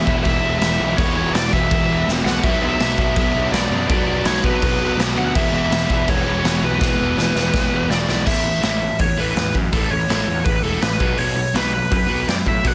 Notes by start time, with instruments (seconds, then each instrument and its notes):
Already playing: overdriven electric guitar E2 B2 E3
0.06 picked electric bass E1, distorted electric guitar E2 B2 E3 G#3 B3 E4, lead electric guitar E5, kick
0.24 picked electric bass E1, distorted electric guitar E3 G#3 B3 E4, lead electric guitar E5, kick, crash
0.41 picked electric bass E1
0.46 distorted electric guitar E3 G#3 B3 E4
0.59 picked electric bass E1, distorted electric guitar E2 B2, lead electric guitar E5, snare, crash
0.63 distorted electric guitar E3 G#3 B3 E4
0.79 picked electric bass B1, distorted electric guitar E3 G#3 B3 E4
0.97 picked electric bass E1, distorted electric guitar E2 B2 E3 G#3 B3 E4, overdriven electric guitar E2 B2 E3, lead electric guitar C#5, kick, crash
1.15 picked electric bass E1, distorted electric guitar E3 G#3 B3 E4
1.33 picked electric bass E1, distorted electric guitar E3 G#3 B3 E4, lead electric guitar D5, snare, crash
1.52 picked electric bass E1, distorted electric guitar E2 B2 E3 G#3 B3 E4, lead electric guitar E5, kick
1.71 picked electric bass E1, distorted electric guitar E3 G#3 B3 E4, kick, crash
1.89 picked electric bass E1, distorted electric guitar E3 G#3 B3 E4
2.06 picked electric bass E1, distorted electric guitar E2 B2 E3 G#3 B3 E4, snare
2.24 picked electric bass B1, distorted electric guitar E3 G#3 B3 E4, lead electric guitar F#5, snare
2.42 picked electric bass B1, overdriven electric guitar B2 F#3 B3, distorted electric guitar B2 F#3, lead electric guitar E5, kick, crash
2.46 distorted electric guitar B3 D4
2.61 picked electric bass B1, distorted electric guitar B2 F#3 B3 D4, lead electric guitar E5
2.79 picked electric bass B1, distorted electric guitar B2 F#3 B3 D4, snare, crash
2.96 picked electric bass B1, distorted electric guitar B2 B3, lead electric guitar E5, kick
3.00 distorted electric guitar F#3 B3 D4
3.16 picked electric bass B1, distorted electric guitar B2 F#3 B3 D4, lead electric guitar E5, kick, crash
3.34 picked electric bass B1, distorted electric guitar B2 F#3 B3 D4
3.52 picked electric bass B1, distorted electric guitar B2 F#3 B3 D4, lead electric guitar D5, snare, crash
3.70 picked electric bass F#2, distorted electric guitar B2 F#3 B3 D4
3.88 picked electric bass B1, overdriven electric guitar B2 F#3 B3, distorted electric guitar B2 F#3 B3 D4, lead electric guitar D5, kick, crash
4.06 picked electric bass B1, distorted electric guitar B2 F#3 B3 D4
4.24 picked electric bass B1, distorted electric guitar B2, lead electric guitar C#5, snare, crash
4.28 distorted electric guitar F#3 B3 D4
4.43 picked electric bass B1, distorted electric guitar B2 F#3 B3 D4, lead electric guitar B4, kick
4.62 picked electric bass B1, distorted electric guitar B2 F#3 B3 D4, kick, crash
4.79 picked electric bass B1, distorted electric guitar B2 F#3 B3
4.83 distorted electric guitar D4
4.97 picked electric bass B1, distorted electric guitar B2 F#3 B3 D4, snare, crash
5.15 picked electric bass D2, distorted electric guitar B2 F#3 B3 D4, lead electric guitar F#5
5.34 picked electric bass E1, distorted electric guitar E2 B2 E3 G#3 B3 E4, overdriven electric guitar E2 B2 E3, lead electric guitar E5, kick, crash
5.52 picked electric bass E1, distorted electric guitar E3 G#3 B3 E4, lead electric guitar E5
5.70 picked electric bass E1, distorted electric guitar E3 G#3 B3 E4, snare, crash
5.89 picked electric bass E1, distorted electric guitar E2 B2 E3 G#3 B3 E4, lead electric guitar E5, kick
6.08 picked electric bass E1, distorted electric guitar E3 G#3 B3 E4, lead electric guitar C#5, kick, crash
6.25 picked electric bass E1, distorted electric guitar E3 G#3 B3 E4
6.43 picked electric bass E1, distorted electric guitar E2 B2 E3 G#3 B3 E4, snare, crash
6.62 picked electric bass B1, distorted electric guitar E3 G#3 B3 E4, lead electric guitar B4
6.80 picked electric bass E1, overdriven electric guitar E2 B2 E3, distorted electric guitar E2 B2 E3 G#3 B3 E4, kick, snare
7.00 picked electric bass E1, distorted electric guitar E3 G#3 B3 E4
7.17 picked electric bass E1, distorted electric guitar E3 G#3 B3 E4, snare
7.35 picked electric bass E1, distorted electric guitar E2 B2 E3 G#3 B3 E4, snare
7.54 picked electric bass E1, distorted electric guitar E3 G#3 B3 E4, kick, snare
7.70 picked electric bass E1, distorted electric guitar E3 G#3 B3 E4
7.89 picked electric bass E1, distorted electric guitar E2 B2 E3 G#3 B3 E4, lead electric guitar D5, snare
8.07 picked electric bass B1, distorted electric guitar E3 G#3 B3 E4, snare
8.25 picked electric bass A1, overdriven electric guitar A2 E3 A3, lead electric guitar E5, kick, crash
8.44 overdriven electric guitar A2 E3
8.61 picked electric bass A1, overdriven electric guitar A2 E3 A3, lead electric guitar E5, snare, open hi-hat
8.81 overdriven electric guitar A2 E3
8.99 picked electric bass E2, overdriven electric guitar A2 E3, lead electric guitar C#5, kick, open hi-hat
9.17 picked electric bass A1, overdriven electric guitar A2 E3 A3, lead electric guitar B4
9.36 picked electric bass E2, overdriven electric guitar A2 E3, snare, open hi-hat
9.54 picked electric bass F#2, overdriven electric guitar A2 E3, kick
9.72 picked electric bass A1, overdriven electric guitar A2 E3 A3, lead electric guitar A4, kick, open hi-hat
9.91 picked electric bass A1, overdriven electric guitar A2 E3, lead electric guitar C#5
10.08 picked electric bass A1, overdriven electric guitar A2 E3 A3, snare, open hi-hat
10.27 picked electric bass E2, overdriven electric guitar A2 E3
10.45 picked electric bass A1, overdriven electric guitar A2 E3, lead electric guitar B4, kick, open hi-hat
10.62 picked electric bass E1, overdriven electric guitar A2 E3 A3, lead electric guitar A4
10.82 picked electric bass A1, overdriven electric guitar A2 E3, lead electric guitar B4, snare, open hi-hat
11.00 picked electric bass B1, overdriven electric guitar B2 F#3 B3, kick
11.17 picked electric bass B1, overdriven electric guitar B2 F#3 B3, lead electric guitar C#5, open hi-hat
11.36 overdriven electric guitar B2 F#3
11.54 picked electric bass B1, overdriven electric guitar B2 F#3 B3, lead electric guitar B4, snare, open hi-hat
11.72 overdriven electric guitar B2 F#3, lead electric guitar B4
11.90 picked electric bass F#2, overdriven electric guitar B2 F#3, lead electric guitar B4, kick, open hi-hat
12.07 picked electric bass B1, overdriven electric guitar B2 F#3 B3
12.27 picked electric bass F#2, overdriven electric guitar B2 F#3, lead electric guitar D5, snare, open hi-hat
12.46 picked electric bass A2, overdriven electric guitar B2 F#3, lead electric guitar E5, kick
12.64 picked electric bass B1, overdriven electric guitar B2 F#3 B3, lead electric guitar F#5, kick, open hi-hat